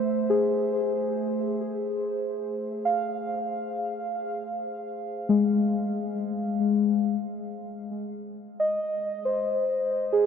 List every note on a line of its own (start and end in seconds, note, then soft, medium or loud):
0.00 0.20 A3 medium
0.00 0.47 C5 soft
0.30 3.55 G#4 soft
2.85 6.10 F5 medium
5.29 7.15 G#3 medium
8.60 9.43 D#5 soft
9.25 10.26 C5 soft
10.13 10.26 G#4 soft